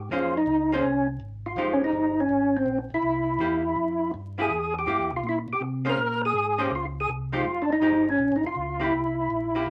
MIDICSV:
0, 0, Header, 1, 4, 480
1, 0, Start_track
1, 0, Tempo, 367872
1, 134, Time_signature, 4, 2, 24, 8
1, 12657, End_track
2, 0, Start_track
2, 0, Title_t, "Tonewheel organ"
2, 0, Program_c, 0, 16
2, 162, Note_on_c, 0, 65, 85
2, 473, Note_off_c, 0, 65, 0
2, 486, Note_on_c, 0, 63, 101
2, 960, Note_off_c, 0, 63, 0
2, 978, Note_on_c, 0, 61, 66
2, 1399, Note_off_c, 0, 61, 0
2, 1907, Note_on_c, 0, 65, 84
2, 2260, Note_on_c, 0, 61, 64
2, 2264, Note_off_c, 0, 65, 0
2, 2371, Note_off_c, 0, 61, 0
2, 2403, Note_on_c, 0, 63, 95
2, 2873, Note_on_c, 0, 61, 73
2, 2875, Note_off_c, 0, 63, 0
2, 3348, Note_on_c, 0, 60, 80
2, 3349, Note_off_c, 0, 61, 0
2, 3634, Note_off_c, 0, 60, 0
2, 3840, Note_on_c, 0, 64, 82
2, 5366, Note_off_c, 0, 64, 0
2, 5760, Note_on_c, 0, 68, 82
2, 6185, Note_off_c, 0, 68, 0
2, 6246, Note_on_c, 0, 67, 96
2, 6668, Note_off_c, 0, 67, 0
2, 6738, Note_on_c, 0, 65, 83
2, 6873, Note_off_c, 0, 65, 0
2, 6900, Note_on_c, 0, 64, 84
2, 7028, Note_off_c, 0, 64, 0
2, 7211, Note_on_c, 0, 67, 91
2, 7336, Note_off_c, 0, 67, 0
2, 7691, Note_on_c, 0, 70, 109
2, 8111, Note_off_c, 0, 70, 0
2, 8159, Note_on_c, 0, 68, 107
2, 8631, Note_off_c, 0, 68, 0
2, 8639, Note_on_c, 0, 67, 83
2, 8770, Note_off_c, 0, 67, 0
2, 8811, Note_on_c, 0, 65, 87
2, 8942, Note_off_c, 0, 65, 0
2, 9137, Note_on_c, 0, 68, 90
2, 9261, Note_off_c, 0, 68, 0
2, 9616, Note_on_c, 0, 65, 89
2, 9940, Note_on_c, 0, 62, 69
2, 9957, Note_off_c, 0, 65, 0
2, 10050, Note_off_c, 0, 62, 0
2, 10079, Note_on_c, 0, 63, 112
2, 10554, Note_off_c, 0, 63, 0
2, 10567, Note_on_c, 0, 61, 76
2, 10909, Note_on_c, 0, 63, 68
2, 10914, Note_off_c, 0, 61, 0
2, 11015, Note_off_c, 0, 63, 0
2, 11046, Note_on_c, 0, 65, 97
2, 11519, Note_off_c, 0, 65, 0
2, 11529, Note_on_c, 0, 64, 77
2, 12657, Note_off_c, 0, 64, 0
2, 12657, End_track
3, 0, Start_track
3, 0, Title_t, "Hollow-body jazz guitar"
3, 0, Program_c, 1, 26
3, 145, Note_on_c, 1, 58, 54
3, 153, Note_on_c, 1, 61, 58
3, 157, Note_on_c, 1, 68, 57
3, 164, Note_on_c, 1, 72, 54
3, 424, Note_off_c, 1, 58, 0
3, 428, Note_off_c, 1, 61, 0
3, 430, Note_off_c, 1, 68, 0
3, 433, Note_off_c, 1, 72, 0
3, 943, Note_on_c, 1, 58, 75
3, 946, Note_on_c, 1, 61, 66
3, 954, Note_on_c, 1, 68, 70
3, 960, Note_on_c, 1, 72, 83
3, 1081, Note_off_c, 1, 58, 0
3, 1083, Note_off_c, 1, 61, 0
3, 1087, Note_off_c, 1, 68, 0
3, 1090, Note_off_c, 1, 72, 0
3, 2043, Note_on_c, 1, 53, 52
3, 2058, Note_on_c, 1, 56, 53
3, 2062, Note_on_c, 1, 63, 57
3, 2062, Note_on_c, 1, 67, 56
3, 2775, Note_off_c, 1, 53, 0
3, 2783, Note_off_c, 1, 56, 0
3, 2785, Note_off_c, 1, 63, 0
3, 2785, Note_off_c, 1, 67, 0
3, 4439, Note_on_c, 1, 58, 55
3, 4443, Note_on_c, 1, 64, 60
3, 4450, Note_on_c, 1, 67, 63
3, 4724, Note_off_c, 1, 58, 0
3, 4726, Note_off_c, 1, 64, 0
3, 4729, Note_off_c, 1, 67, 0
3, 5715, Note_on_c, 1, 58, 62
3, 5726, Note_on_c, 1, 64, 64
3, 5736, Note_on_c, 1, 67, 66
3, 5861, Note_off_c, 1, 58, 0
3, 5866, Note_off_c, 1, 64, 0
3, 5871, Note_off_c, 1, 67, 0
3, 6353, Note_on_c, 1, 58, 58
3, 6359, Note_on_c, 1, 64, 53
3, 6364, Note_on_c, 1, 67, 59
3, 6640, Note_off_c, 1, 58, 0
3, 6643, Note_off_c, 1, 64, 0
3, 6645, Note_off_c, 1, 67, 0
3, 7630, Note_on_c, 1, 58, 70
3, 7640, Note_on_c, 1, 68, 66
3, 7641, Note_on_c, 1, 61, 70
3, 7649, Note_on_c, 1, 72, 67
3, 7779, Note_off_c, 1, 58, 0
3, 7784, Note_off_c, 1, 61, 0
3, 7784, Note_off_c, 1, 68, 0
3, 7788, Note_off_c, 1, 72, 0
3, 8591, Note_on_c, 1, 58, 69
3, 8591, Note_on_c, 1, 61, 73
3, 8602, Note_on_c, 1, 68, 70
3, 8604, Note_on_c, 1, 72, 75
3, 8740, Note_off_c, 1, 58, 0
3, 8740, Note_off_c, 1, 61, 0
3, 8745, Note_off_c, 1, 68, 0
3, 8746, Note_off_c, 1, 72, 0
3, 9555, Note_on_c, 1, 53, 51
3, 9561, Note_on_c, 1, 56, 59
3, 9564, Note_on_c, 1, 63, 58
3, 9571, Note_on_c, 1, 67, 64
3, 9703, Note_off_c, 1, 53, 0
3, 9706, Note_off_c, 1, 56, 0
3, 9707, Note_off_c, 1, 63, 0
3, 9711, Note_off_c, 1, 67, 0
3, 10196, Note_on_c, 1, 53, 54
3, 10198, Note_on_c, 1, 56, 59
3, 10203, Note_on_c, 1, 63, 60
3, 10208, Note_on_c, 1, 67, 69
3, 10485, Note_off_c, 1, 53, 0
3, 10486, Note_off_c, 1, 56, 0
3, 10489, Note_off_c, 1, 63, 0
3, 10491, Note_off_c, 1, 67, 0
3, 11477, Note_on_c, 1, 58, 59
3, 11492, Note_on_c, 1, 64, 59
3, 11496, Note_on_c, 1, 67, 70
3, 11627, Note_off_c, 1, 58, 0
3, 11635, Note_off_c, 1, 64, 0
3, 11637, Note_off_c, 1, 67, 0
3, 12460, Note_on_c, 1, 58, 58
3, 12469, Note_on_c, 1, 64, 66
3, 12474, Note_on_c, 1, 67, 63
3, 12600, Note_off_c, 1, 58, 0
3, 12605, Note_off_c, 1, 64, 0
3, 12608, Note_off_c, 1, 67, 0
3, 12657, End_track
4, 0, Start_track
4, 0, Title_t, "Tonewheel organ"
4, 0, Program_c, 2, 16
4, 131, Note_on_c, 2, 41, 77
4, 596, Note_off_c, 2, 41, 0
4, 601, Note_on_c, 2, 37, 82
4, 1070, Note_off_c, 2, 37, 0
4, 1082, Note_on_c, 2, 36, 84
4, 1550, Note_off_c, 2, 36, 0
4, 1563, Note_on_c, 2, 32, 84
4, 2029, Note_off_c, 2, 32, 0
4, 2038, Note_on_c, 2, 29, 75
4, 2506, Note_off_c, 2, 29, 0
4, 2511, Note_on_c, 2, 31, 82
4, 2982, Note_off_c, 2, 31, 0
4, 2988, Note_on_c, 2, 32, 84
4, 3460, Note_off_c, 2, 32, 0
4, 3469, Note_on_c, 2, 34, 80
4, 3769, Note_off_c, 2, 34, 0
4, 3789, Note_on_c, 2, 34, 38
4, 3873, Note_off_c, 2, 34, 0
4, 3948, Note_on_c, 2, 36, 81
4, 4418, Note_off_c, 2, 36, 0
4, 4422, Note_on_c, 2, 40, 85
4, 4895, Note_off_c, 2, 40, 0
4, 4908, Note_on_c, 2, 41, 80
4, 5378, Note_off_c, 2, 41, 0
4, 5401, Note_on_c, 2, 43, 78
4, 5864, Note_off_c, 2, 43, 0
4, 5874, Note_on_c, 2, 40, 75
4, 6340, Note_off_c, 2, 40, 0
4, 6347, Note_on_c, 2, 43, 83
4, 6507, Note_off_c, 2, 43, 0
4, 6516, Note_on_c, 2, 40, 55
4, 6676, Note_off_c, 2, 40, 0
4, 6680, Note_on_c, 2, 36, 63
4, 6827, Note_off_c, 2, 36, 0
4, 6831, Note_on_c, 2, 46, 78
4, 7128, Note_off_c, 2, 46, 0
4, 7151, Note_on_c, 2, 46, 37
4, 7233, Note_off_c, 2, 46, 0
4, 7310, Note_on_c, 2, 48, 78
4, 7779, Note_off_c, 2, 48, 0
4, 7792, Note_on_c, 2, 46, 80
4, 8261, Note_off_c, 2, 46, 0
4, 8271, Note_on_c, 2, 44, 84
4, 8740, Note_off_c, 2, 44, 0
4, 8752, Note_on_c, 2, 37, 88
4, 9222, Note_off_c, 2, 37, 0
4, 9239, Note_on_c, 2, 36, 86
4, 9706, Note_off_c, 2, 36, 0
4, 9722, Note_on_c, 2, 29, 84
4, 10188, Note_off_c, 2, 29, 0
4, 10198, Note_on_c, 2, 31, 85
4, 10667, Note_off_c, 2, 31, 0
4, 10681, Note_on_c, 2, 34, 85
4, 10838, Note_off_c, 2, 34, 0
4, 10856, Note_on_c, 2, 32, 59
4, 11008, Note_on_c, 2, 29, 61
4, 11010, Note_off_c, 2, 32, 0
4, 11155, Note_off_c, 2, 29, 0
4, 11156, Note_on_c, 2, 37, 83
4, 11628, Note_off_c, 2, 37, 0
4, 11640, Note_on_c, 2, 36, 76
4, 12110, Note_off_c, 2, 36, 0
4, 12137, Note_on_c, 2, 34, 81
4, 12601, Note_off_c, 2, 34, 0
4, 12609, Note_on_c, 2, 36, 84
4, 12657, Note_off_c, 2, 36, 0
4, 12657, End_track
0, 0, End_of_file